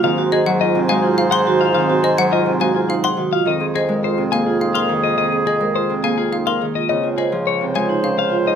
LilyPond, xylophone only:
\new Staff \with { instrumentName = "Xylophone" } { \time 3/4 \key aes \mixolydian \tempo 4 = 105 r8 ees''16 ges''16 r8 f''16 r16 f''16 c'''16 r8 | r8 ees''16 ges''16 r8 f''16 r16 f''16 c'''16 r8 | r8 ees''16 r8. f''16 r16 f''16 c'''16 r8 | r8 ees''16 r8. f''16 r16 f''16 c'''16 r8 |
r8 ees''16 r8. f''16 r16 f''16 r8. | }